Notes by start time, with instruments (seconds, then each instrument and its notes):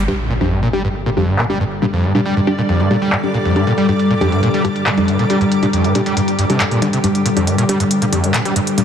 0.08 acid bass G2, synth drone G2 D3, synth stab G3 D4 G4, ambient pad G3, closed hi-hat, impact
0.19 ambient pad D5, closed hi-hat
0.30 acid bass A#2, closed hi-hat
0.34 ambient pad G4
0.41 acid bass F2, synth stab G3 D4 G4, closed hi-hat
0.52 acid bass G2, closed hi-hat
0.63 acid bass A#2, closed hi-hat
0.73 synth stab G3 D4 G4, acid bass G3, closed hi-hat
0.84 acid bass G2, closed hi-hat
0.95 closed hi-hat
1.06 acid bass A#2, closed hi-hat
1.17 acid bass F2, synth stab G3 D4 G4, closed hi-hat
1.28 acid bass G2, closed hi-hat
1.39 acid bass A#2, clap, closed hi-hat
1.50 synth stab G3 D4 G4, acid bass G3, closed hi-hat
1.59 acid bass G2, ambient pad D6, closed hi-hat
1.71 closed hi-hat
1.82 acid bass A#2, synth stab G3 D4 G4, closed hi-hat
1.93 acid bass F2, closed hi-hat
2.04 acid bass G2, closed hi-hat
2.15 acid bass A#2, synth stab G3 D4 G4, closed hi-hat
2.25 acid bass G3, closed hi-hat
2.37 acid bass G2, closed hi-hat
2.47 synth stab G3 D4 G4, closed hi-hat
2.58 acid bass A#2, closed hi-hat
2.69 acid bass F2, closed hi-hat
2.80 acid bass G2, closed hi-hat
2.91 acid bass A#2, synth stab G3 D4 G4, closed hi-hat
3.02 acid bass G3, closed hi-hat
3.12 acid bass G2, clap, closed hi-hat
3.24 synth stab G3 D4 G4, closed hi-hat
3.34 acid bass A#2, closed hi-hat
3.45 acid bass F2, closed hi-hat
3.56 acid bass G2, synth stab G3 D4 G4, closed hi-hat
3.67 acid bass A#2, closed hi-hat
3.78 acid bass G3, closed hi-hat
3.89 acid bass G2, synth stab G3 D4 G4, closed hi-hat
4.00 closed hi-hat
4.11 acid bass A#2, closed hi-hat
4.21 acid bass F2, synth stab G3 D4 G4, closed hi-hat
4.32 acid bass G2, closed hi-hat
4.43 acid bass A#2, closed hi-hat
4.54 acid bass G3, closed hi-hat
4.65 acid bass G2, synth stab G3 D4 G4, closed hi-hat
4.76 closed hi-hat
4.86 acid bass A#2, clap, closed hi-hat
4.98 acid bass F2, synth stab G3 D4 G4, closed hi-hat
5.08 acid bass G2, closed hi-hat
5.19 acid bass A#2, closed hi-hat
5.30 acid bass G3, synth stab G3 D4 G4, closed hi-hat
5.41 acid bass G2, closed hi-hat
5.52 closed hi-hat
5.63 acid bass A#2, synth stab G3 D4 G4, closed hi-hat
5.73 acid bass F2, closed hi-hat
5.84 acid bass G2, closed hi-hat
5.95 acid bass A#2, synth stab G3 D4 G4, closed hi-hat
6.06 acid bass G3, closed hi-hat
6.17 acid bass G2, closed hi-hat
6.28 closed hi-hat
6.39 acid bass G2, closed hi-hat
6.50 acid bass C3, synth stab G3 D4 G4, closed hi-hat
6.60 acid bass G2, clap, closed hi-hat
6.71 acid bass A#2, closed hi-hat
6.82 acid bass D3, synth stab G3 D4 G4, closed hi-hat
6.93 acid bass C3, closed hi-hat
7.04 acid bass G2, synth stab G3 D4 G4, closed hi-hat
7.15 closed hi-hat
7.26 acid bass A#2, closed hi-hat
7.37 acid bass F2, synth stab G3 D4 G4, closed hi-hat
7.47 acid bass G2, closed hi-hat
7.58 acid bass A#2, ambient pad C5, closed hi-hat
7.69 acid bass G3, synth stab G3 D4 G4, closed hi-hat
7.80 acid bass G2, closed hi-hat
7.91 closed hi-hat
8.02 acid bass A#2, closed hi-hat
8.12 acid bass F2, synth stab G3 D4 G4, closed hi-hat
8.21 acid bass G2, ambient pad C6, closed hi-hat
8.34 acid bass A#2, clap, closed hi-hat
8.45 acid bass G3, synth stab G3 D4 G4, closed hi-hat
8.56 acid bass G2, closed hi-hat
8.67 closed hi-hat
8.78 acid bass A#2, synth stab G3 D4 G4, closed hi-hat